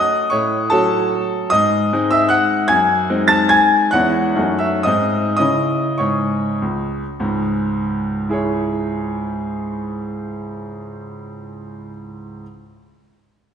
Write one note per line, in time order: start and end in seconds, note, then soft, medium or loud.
0.00 0.29 A3 medium
0.00 0.29 C#4 medium
0.00 0.30 F#4 medium
0.00 0.30 D#5 medium
0.00 0.32 D#6 loud
0.30 0.71 A2 medium
0.30 0.69 C#5 medium
0.30 0.70 C#6 medium
0.70 1.49 F#3 medium
0.70 1.49 C#4 medium
0.70 1.49 F#4 medium
0.70 1.48 A4 medium
0.70 1.52 A5 loud
1.50 1.92 G#2 medium
1.50 2.09 D#5 loud
1.50 2.12 D#6 loud
1.93 2.66 G#3 medium
1.93 2.66 C4 medium
1.93 2.66 D#4 medium
2.11 2.30 E5 medium
2.11 2.31 E6 loud
2.29 2.66 F#5 loud
2.29 2.68 F#6 loud
2.68 3.09 F#2 medium
2.68 3.27 G#5 medium
2.68 3.30 G#6 loud
3.10 3.88 G#3 medium
3.10 3.88 C4 medium
3.10 3.88 D#4 medium
3.28 3.49 A5 loud
3.28 3.50 A6 loud
3.49 3.89 G#5 loud
3.49 3.91 G#6 loud
3.91 4.35 E2 medium
3.91 4.32 G#3 medium
3.91 4.33 C#4 medium
3.91 4.33 E4 soft
3.91 4.56 F#5 loud
3.91 4.60 F#6 loud
4.36 4.83 F#2 medium
4.36 4.81 A3 medium
4.36 4.81 C#4 medium
4.36 4.81 D#4 medium
4.59 4.83 E5 medium
4.59 4.84 E6 medium
4.83 5.36 G#2 medium
4.83 5.34 G#3 soft
4.83 5.34 C4 medium
4.83 5.35 D#4 medium
4.83 5.34 D#5 medium
4.83 5.35 D#6 loud
5.37 5.82 C#3 medium
5.37 5.88 C#4 medium
5.37 5.88 E4 soft
5.37 5.95 D#5 medium
5.37 5.99 D#6 loud
5.98 6.43 G#2 medium
5.98 6.56 C#5 medium
5.98 6.60 C#6 medium
6.62 7.02 C#2 medium
7.19 11.60 C#2 medium
7.19 11.61 G#2 medium
8.29 11.88 E4 medium
8.29 11.88 G#4 medium
8.29 11.89 C#5 soft